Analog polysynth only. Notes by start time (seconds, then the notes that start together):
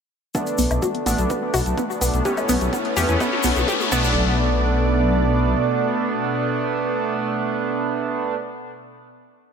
0.35 A3 B3 D4
1.06 A3 B3 D4
2.25 A3 B3 C#4
2.97 A3 B3 C#4
3.92 A3 B3 D4